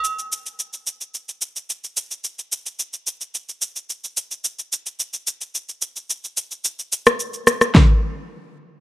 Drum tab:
SH |xxxxxxxxxxxxxxxx|xxxxxxxxxxxxxxxx|xxxxxxxxxxxxxxxx|xxxxxxxx--------|
SD |----------------|----------------|----------------|---r--rro-------|
BD |----------------|----------------|----------------|--------o-------|